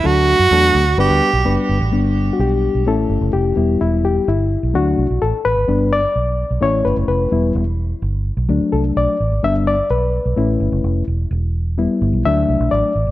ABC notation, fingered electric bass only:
X:1
M:4/4
L:1/16
Q:1/4=128
K:G
V:1 name="Fingered electric bass" clef=bass
D,,3 F,, E,,2 D,,2 G,,, D,, z B,,, F,,, z G,,, A,,, | G,,,4 B,,,3 B,,, A,,,2 G,,, F,,, =F,,,2 E,,,2 | E,,,4 G,,,3 B,,, D,,2 C,, B,,, A,,, z A,,, _A,,, | G,,,4 B,,,3 B,,, A,,,2 G,,, F,,, =F,,,2 E,,,2 |
E,,,4 G,,,3 B,,, D,, z C,,2 B,,, z A,,, _A,,, | G,,,4 B,,,3 B,,, A,,,2 G,,, F,,, =F,,,2 E,,,2 | E,,,4- E,,, z G,,, B,,, D,,2 C,, B,,, A,,, z A,,, _A,,, |]